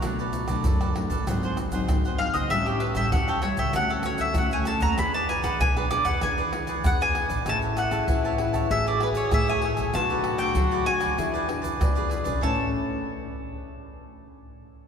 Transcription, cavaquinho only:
\new Staff \with { instrumentName = "Cavaquinho" } { \time 4/4 \key a \major \tempo 4 = 97 <d' a' b' d''>16 <a' b' d''>8 <a' b' d''>16 <d' a' b' d''>16 <a' b' d''>16 r16 <a' b' d''>16 <fis' gis' bis' fis''>16 <gis' bis' fis''>16 r16 <gis' bis' fis''>8 <gis' bis' fis''>16 <fis' gis' bis' fis''>16 <gis' bis' fis''>16 | <g' a' cis'' g''>16 <a' cis'' g''>8 <a' cis'' g''>16 <g' a' cis'' g''>16 <a' cis'' g''>16 r16 <a' cis'' g''>16 <d' a' cis'' fis''>16 <a' cis'' fis''>16 r16 <a' cis'' fis''>8 <a' cis'' fis''>16 <d' a' cis'' fis''>16 <a' cis'' fis''>16 | <e' gis' b' d''>16 <gis' b' d''>8 <gis' b' d''>16 <e' gis' b' d''>16 <gis' b' d''>16 r16 <gis' b' d''>16 <e' gis' b' d''>16 <gis' b' d''>16 r16 <gis' b' d''>8 <gis' b' d''>16 <e' gis' b' d''>16 <gis' b' d''>16 | <gis' cis'' e'' a''>16 <cis'' e'' a''>8 <cis'' e'' a''>16 <gis' cis'' e'' a''>16 <cis'' e'' a''>16 r16 <cis'' e'' a''>16 <fis' a' cis'' e''>16 <a' cis'' e''>16 r16 <cis'' e''>8 <a' cis'' e''>16 <fis' a' cis'' e''>16 <a' cis'' e''>16 |
<d' a' b' d''>16 <a' b' d''>8 <a' b' d''>16 <d' a' b' d''>16 <a' b' d''>16 r16 <a' b' d''>16 <e' gis' b' d''>16 <gis' b' d''>16 r16 <gis' b' d''>8 <gis' b' d''>16 <e' gis' b' d''>16 <gis' b' d''>16 | <gis' cis'' e'' a''>8 r2. r8 | }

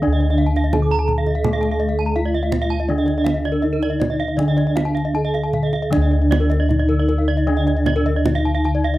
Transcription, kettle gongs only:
<<
  \new Staff \with { instrumentName = "Kettle gongs" } { \time 4/4 \tempo 4 = 79 << { r2. ees'8 r8 | r4 ees'8 r4. ees'8 r8 | r4 ees'8 r4. ees'8 r8 | } \\ { d'2. r4 | d'2. r4 | d'2. r4 | } >> }
  \new Staff \with { instrumentName = "Kettle gongs" } { \clef bass \time 4/4 << { d4 r2. | r2 d2~ | d4 r2. | } \\ { d,1~ | d,2 r2 | d,1 | } >> }
>>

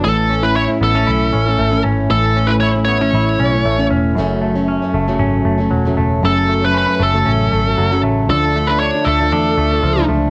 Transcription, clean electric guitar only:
\new Staff \with { instrumentName = "Clean electric guitar" } { \time 4/4 \key a \major \tempo 4 = 116 a,8 cis'8 e'8 b16 cis'16 e'8 cis'8 a8 cis'8 | a,8 cis'8 e'8 b16 cis'16 e'8 cis'8 a8 cis'8 | fis,8 a8 cis'8 a8 cis'8 a8 fis8 a8 | fis,8 a8 cis'8 a8 cis'8 a8 fis8 a8 |
d8 a8 d'8 a8 d'8 a8 f8 a8 | }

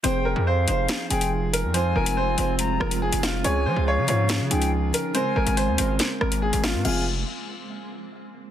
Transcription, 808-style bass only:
\new Staff \with { instrumentName = "808-style bass" } { \clef bass \time 4/4 \key f \minor \tempo 4 = 141 f,,8. f,8. f,,8 r8 f,,4~ f,,16 f,16~ | f,8 f,,4 f,,4 f,,8. f,,8. | des,8 f16 des,8 des16 aes,8. des16 des,4 r8 | r8 aes,,16 aes,,8 ees,16 aes,,8 r8 aes,,8. aes,,8 aes,16 |
f,,4 r2. | }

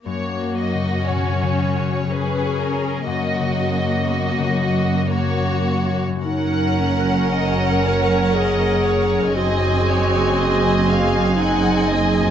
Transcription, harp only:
\new Staff \with { instrumentName = "Harp" } { \time 3/4 \key fis \major \tempo 4 = 59 << { r2. | r2. | <fis, cis' fis' ais'>2. | <fis, bis dis' gis'>2. | } \\ { \tuplet 3/2 { fis,8 cis'8 cis8 b,8 cis8 fis'8 ais'8 fis'8 cis'8 } | \tuplet 3/2 { fis,8 cis8 cis'8 b8 cis8 fis'8 ais'8 fis'8 cis'8~ } | cis'2. | r2. | } >> }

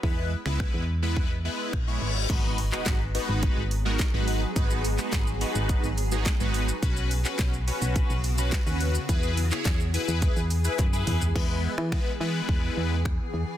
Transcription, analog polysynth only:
\new Staff \with { instrumentName = "Analog polysynth" } { \time 4/4 \key gis \minor \tempo 4 = 106 <gis b e' b'>8 r16 <gis b e' b'>8. r16 <gis b e' b'>8 r16 <gis b e' b'>8 r16 <gis b e' cis''>8 r16 | <gis b dis' fis' b'>8 r16 <gis b dis' fis' b'>8 r16 <gis b dis' fis' b'>8. r8 <gis b dis' fis' ais'>16 r16 <gis b dis' fis' b'>8 r16 | <gis b dis' fis' b'>8 r16 <gis b dis' fis' b'>8 r16 <gis b dis' fis' b'>8. r8 <gis b dis' fis' gis'>16 r16 <gis b dis' fis' b'>8 r16 | <cis' fis' b'>8 r16 <cis' fis' b'>8 r16 <cis' fis' b'>8. r8 <cis' fis' b'>16 r16 <cis' fis' b'>8 r16 |
<e' gis' b'>8 r16 <e' gis' cis''>8 r16 <e' gis' b'>8. r8 <e' gis' b'>16 r16 <e' gis' b'>8 r16 | <gis b e' b'>8. r16 <gis b e' b'>16 r16 <gis b e' b'>4~ <gis b e' b'>16 r4 r16 | }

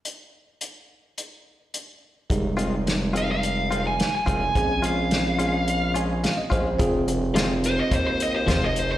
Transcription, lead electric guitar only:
\new Staff \with { instrumentName = "Lead electric guitar" } { \time 4/4 \key f \minor \tempo 4 = 107 r1 | r4. f''16 f''4 aes''8 aes''8.~ | aes''8 f''2 r4. | r4. c''16 ees''16 c''16 c''16 ees''16 c''16 c''16 ees''16 c''16 c''16 | }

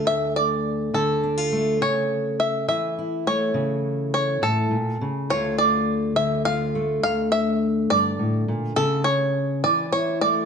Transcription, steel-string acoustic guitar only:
\new Staff \with { instrumentName = "Steel-string acoustic guitar" } { \clef bass \time 6/8 \key d \minor \tempo 4. = 69 << { r2 d'16 f'16 a8 | r2 e'8 a8 | r2. | <d a f'>2 f'8 a8 |
r2. | r2 e'8 a8 | } \\ { d4. d4. | cis4. e4. | cis4. a,8 bes,8 cis8 | d,4. d4. |
d,4. g,8 a,8 bes,8 | cis4. e4. | } >> }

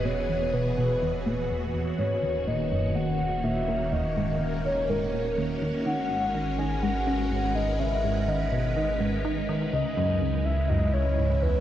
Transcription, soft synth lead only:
\new Staff \with { instrumentName = "Soft synth lead" } { \time 4/4 \key dis \phrygian \tempo 4 = 124 cis''4 b'2~ b'8 r8 | cis''4 dis''4 fis''4 e''4 | dis''4 r8 cis''8 ais'4 r4 | fis''4. gis''8 fis''4. dis''8 |
e''4 dis''2~ dis''8 r8 | dis''4. e''8 dis''8 cis''4 b'8 | }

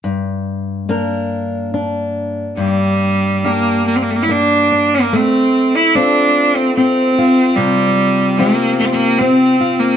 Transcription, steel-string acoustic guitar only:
\new Staff \with { instrumentName = "Steel-string acoustic guitar" } { \time 3/4 \key g \minor \tempo 4 = 72 g,4 <bes d' bes'>4 d'4 | g,4 <bes d' g'>4 bes8 d'8 | a4 <c' f' a'>4 c'8 f'8 | c4 <c' f' g'>4 c'8 f'8 | }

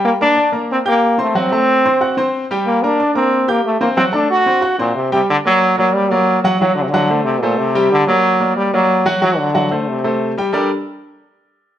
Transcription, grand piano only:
\new Staff \with { instrumentName = "Grand piano" } { \time 4/4 \key g \minor \tempo 4 = 183 <g g' g''>8 <bes bes' bes''>8 <d' d'' d'''>8 <bes bes' bes''>4 <g' g'' g'''>4 <c' c'' c'''>8 | <fis fis' fis''>8 <a a' a''>4 <c' c'' c'''>8 <fis' fis'' fis'''>8 <c' c'' c'''>4 <g g' g''>8~ | <g g' g''>8 <bes bes' bes''>8 <d' d'' d'''>8 <bes bes' bes''>4 <g' g'' g'''>4 <c' c'' c'''>8 | <fis fis' fis''>8 <a a' a''>4 <c' c'' c'''>8 <fis' fis'' fis'''>8 <c' c'' c'''>4 <g g' g''>8 |
r8 <ais ais' d''>4 <ais ais' d''>4 <ais ais' d''>4 <fis fis' fis''>8 | <fis fis' fis''>4 <fis fis' fis''>8 <a a' c''>4 <a a' c''>4 <g g' g''>8~ | <g g' g''>8 <bes bes' d''>4 <bes bes' d''>4 <bes bes' d''>4 <fis fis' fis''>8 | <fis fis' fis''>4 <fis fis' fis''>8 <a a' c''>4 <a a' c''>4 <g g' g''>8 |
<g d' g' a' bes' d''>8 r2. r8 | }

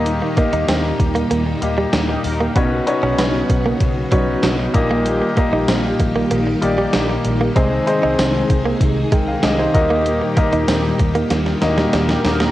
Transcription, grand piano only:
<<
  \new Staff \with { instrumentName = "Grand piano" } { \time 4/4 \key ees \major \tempo 4 = 96 << { r1 | r1 | r1 | r2 r8 <bes' g''>16 <aes' f''>16 <g' ees''>16 <ees' c''>8 r16 |
r1 | } \\ { <bes ees' g' bes' ees''>8 <bes ees' g' bes' ees''>4. r8 <bes ees' g' bes' ees''>4 r8 | <cis' dis' fis' b' cis''>8 <cis' dis' fis' b' cis''>4. r8 <cis' dis' fis' b' cis''>4 <bes ees' g' bes' ees''>8~ | <bes ees' g' bes' ees''>8 <bes ees' g' bes' ees''>4. r8 <bes ees' g' bes' d''>4 r8 | <c' ees' aes' c'' ees''>8 <c' ees' aes' c'' ees''>4. r4. <bes ees' ges' g' bes' ees''>8~ |
<bes ees' ges' g' bes' ees''>8 <bes ees' g' bes' ees''>4. r8 <bes ees' ges' g' bes' ees''>4 r8 | } >> }
  \new Staff \with { instrumentName = "Grand piano" } { \clef bass \time 4/4 \key ees \major ees4 r2. | b,4. r2 bes,8~ | bes,4 r2. | c4. r2 ees8~ |
ees4 r2. | }
>>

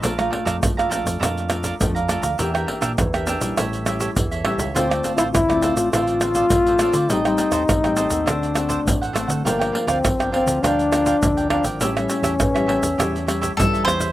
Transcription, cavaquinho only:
\new Staff \with { instrumentName = "Cavaquinho" } { \time 4/4 \key d \minor \tempo 4 = 102 <a' d'' f'' bes''>16 <d'' f'' bes''>16 <a' d'' f'' bes''>16 <a' d'' f'' bes''>16 r16 <d'' f'' bes''>16 <a' d'' f'' bes''>8 <a' d'' f'' bes''>8 <a' d'' f'' bes''>16 <a' d'' f'' bes''>16 r16 <d'' f'' bes''>16 <a' d'' f'' bes''>16 <d'' f'' bes''>16 | <d' bes' e'' g''>16 <bes' e'' g''>16 <d' bes' e'' g''>16 <d' bes' e'' g''>16 r16 <bes' e'' g''>16 <d' bes' e'' g''>8 <g' a' cis'' e''>8 <g' a' cis'' e''>16 <g' a' cis'' e''>16 r16 <a' cis'' e''>16 <g' a' cis'' e''>16 <a' cis'' e''>16 | <f' a' c'' d''>16 <a' c'' d''>16 <f' a' c'' d''>16 <f' a' c'' d''>16 r16 <a' c'' d''>16 <f' a' c'' d''>8 <f' a' c'' d''>8 <f' a' c'' d''>16 <f' a' c'' d''>16 r16 <a' c'' d''>16 <f' a' c'' d''>16 <a' c'' d''>16 | <a' c'' ees'' g''>16 <c'' ees'' g''>16 <a' c'' ees'' g''>16 <a' c'' ees'' g''>16 r16 <c'' ees'' g''>16 <a' c'' ees'' g''>8 <d' a' c'' fis''>8 <d' a' c'' fis''>16 <d' a' c'' fis''>16 r16 <a' c'' fis''>16 <d' a' c'' fis''>16 <a' c'' fis''>16 |
<f' bes' d'' g''>16 <bes' d'' g''>16 <f' bes' d'' g''>16 <f' bes' d'' g''>16 r16 <bes' d'' g''>16 <f' bes' d'' g''>8 <f' bes' d'' g''>8 <f' bes' d'' g''>16 <f' bes' d'' g''>16 r16 <bes' d'' g''>16 <f' bes' d'' g''>16 <bes' d'' g''>16 | <g' a' cis'' e''>16 <a' cis'' e''>16 <g' a' cis'' e''>16 <g' a' cis'' e''>16 r16 <a' cis'' e''>16 <g' a' cis'' e''>8 <g' a' cis'' e''>8 <g' a' cis'' e''>16 <g' a' cis'' e''>16 r16 <a' cis'' e''>16 <g' a' cis'' e''>16 <a' cis'' e''>16 | }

